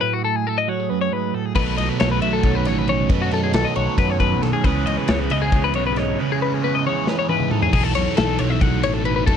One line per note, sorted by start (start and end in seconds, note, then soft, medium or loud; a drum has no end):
0.00 0.90 A2 medium
0.00 0.67 F#3 medium
0.00 0.46 A3 medium
0.00 0.71 E4 medium
0.00 0.12 B4 loud
0.13 0.24 F#4 medium
0.25 0.36 A4 medium
0.36 0.47 G#4 medium
0.47 2.01 A3 medium
0.47 0.57 A4 medium
0.58 0.69 D#5 medium
0.68 4.18 F#3 medium
0.68 0.80 F#4 medium
0.68 0.90 C#5 medium
0.80 1.57 G#4 soft
0.90 1.11 F#2 medium
0.90 1.01 B4 medium
1.01 1.13 C#5 medium
1.11 1.34 G#2 medium
1.11 1.35 B4 medium
1.34 1.56 A2 medium
1.34 1.46 A4 medium
1.46 1.55 G#4 medium
1.55 1.76 B1 loud
1.55 3.08 B2 medium
1.55 2.22 B2 medium
1.55 3.09 D#3 medium
1.55 3.09 F#3 medium
1.55 3.11 B3 medium
1.55 3.10 D#4 loud
1.55 3.10 A4 medium
1.55 1.77 B4 medium
1.55 kick loud
1.55 crash loud
1.78 1.88 B1 medium
1.78 1.89 D#5 medium
1.78 snare soft
1.78 ride medium
1.89 1.99 B4 medium
2.00 2.21 B1 medium
2.00 2.66 A3 medium
2.00 2.11 C#5 medium
2.00 snare loud
2.00 ride loud
2.11 2.22 B4 medium
2.22 2.42 B1 medium
2.22 3.75 F#4 medium
2.22 2.33 E5 medium
2.22 ride medium
2.33 2.55 A4 medium
2.43 2.67 B1 medium
2.43 2.89 C#4 medium
2.43 kick loud
2.43 ride loud
2.55 2.67 B4 medium
2.65 3.06 A1 medium
2.65 3.08 F#2 medium
2.65 3.54 A3 medium
2.65 2.79 C#5 medium
2.65 snare soft
2.65 ride medium
2.79 2.89 B4 medium
2.88 3.98 C#4 medium
2.88 3.11 C#5 medium
2.88 ride medium
3.09 3.30 F#2 medium
3.09 4.63 B2 medium
3.09 3.77 B2 medium
3.09 4.63 D#3 medium
3.09 4.64 F#3 medium
3.09 4.65 B3 loud
3.09 4.64 D#4 loud
3.09 4.65 A4 medium
3.09 3.22 B4 medium
3.09 kick loud
3.09 ride loud
3.22 3.33 F#4 medium
3.31 3.52 F#2 medium
3.31 3.43 A4 medium
3.31 snare soft
3.31 ride medium
3.44 3.54 G#4 medium
3.53 3.64 B1 medium
3.53 4.19 A3 medium
3.53 3.65 A4 medium
3.53 snare loud
3.53 ride loud
3.65 3.76 D#5 medium
3.76 3.87 B1 medium
3.76 4.65 F#4 medium
3.76 3.98 C#5 medium
3.76 ride medium
3.98 4.33 F#2 loud
3.98 4.42 C#4 medium
3.98 4.10 B4 medium
3.98 kick loud
3.98 snare soft
3.98 ride loud
4.10 4.19 C#5 medium
4.20 4.62 F#2 medium
4.20 4.65 A3 medium
4.20 4.42 B4 medium
4.20 kick medium
4.20 ride medium
4.32 4.42 B1 medium
4.42 4.53 B1 medium
4.42 4.68 C#4 medium
4.42 4.53 A4 medium
4.42 snare soft
4.42 ride medium
4.53 4.64 G#4 medium
4.64 4.85 C#2 medium
4.64 5.31 C#3 medium
4.64 6.17 C#3 medium
4.64 5.31 E3 medium
4.64 6.18 G#3 medium
4.64 5.09 B3 medium
4.64 6.20 C#4 medium
4.64 6.21 E4 medium
4.64 5.32 G#4 medium
4.64 6.19 G#4 loud
4.64 4.86 B4 loud
4.64 kick loud
4.64 ride loud
4.86 4.97 C#2 medium
4.86 4.97 D#5 medium
4.86 ride medium
4.97 5.08 B4 medium
5.08 5.29 C#2 medium
5.08 5.76 B3 medium
5.08 5.20 C#5 medium
5.08 snare loud
5.08 ride loud
5.20 5.31 B4 medium
5.30 5.51 C#2 medium
5.30 6.85 E3 medium
5.30 6.17 G#4 medium
5.30 5.42 D#5 medium
5.30 ride medium
5.42 5.64 G#4 medium
5.52 5.75 C#2 medium
5.52 5.65 C#4 medium
5.52 kick loud
5.52 ride loud
5.64 5.75 B4 medium
5.74 6.15 B1 loud
5.74 6.17 G#2 medium
5.74 6.24 B3 medium
5.74 5.86 C#5 medium
5.74 ride medium
5.86 5.97 B4 medium
5.96 6.17 D#4 medium
5.96 6.20 C#5 medium
5.96 snare soft
5.96 ride medium
6.19 7.72 C#3 medium
6.19 6.86 C#3 medium
6.19 7.73 G#3 medium
6.19 7.73 C#4 medium
6.19 7.73 E4 medium
6.19 7.74 G#4 loud
6.19 6.31 B4 medium
6.32 6.42 G#4 medium
6.42 6.54 B4 medium
6.54 6.64 G#4 medium
6.64 7.29 B3 medium
6.64 6.75 B4 medium
6.75 6.86 D#5 medium
6.86 9.28 E3 medium
6.86 7.72 G#4 medium
6.86 7.08 C#5 medium
7.07 7.19 C#4 medium
7.07 7.18 B4 medium
7.07 snare medium
7.19 7.29 C#5 medium
7.29 7.71 G#2 medium
7.29 7.71 B3 medium
7.29 7.51 B4 medium
7.29 high tom medium
7.40 mid tom medium
7.51 7.71 D#4 medium
7.51 7.62 A4 medium
7.51 mid tom medium
7.62 7.72 G#4 medium
7.62 floor tom medium
7.73 7.93 B1 loud
7.73 9.26 B2 medium
7.73 9.28 F#3 loud
7.73 9.28 A3 medium
7.73 9.27 D#4 medium
7.73 7.84 G#4 loud
7.73 9.30 A4 loud
7.73 kick loud
7.73 crash loud
7.84 7.95 A4 medium
7.95 8.06 B1 loud
7.95 8.17 C#5 medium
7.95 ride medium
8.17 8.38 B1 medium
8.17 8.39 A4 medium
8.17 snare loud
8.17 ride loud
8.39 8.60 B1 medium
8.39 8.50 C#5 medium
8.39 ride medium
8.50 8.61 E5 medium
8.61 8.85 B1 medium
8.61 8.83 F#5 medium
8.61 kick loud
8.61 ride loud
8.83 9.24 A1 loud
8.83 8.94 C#5 medium
8.83 ride medium
8.94 9.05 A4 medium
9.05 9.15 B4 medium
9.05 ride medium
9.16 9.26 B4 medium
9.26 9.37 F#2 medium
9.26 9.37 B2 medium
9.26 9.37 F#3 medium
9.26 9.37 A3 medium
9.26 9.37 D#4 loud
9.26 9.37 A4 loud
9.26 kick loud
9.26 ride loud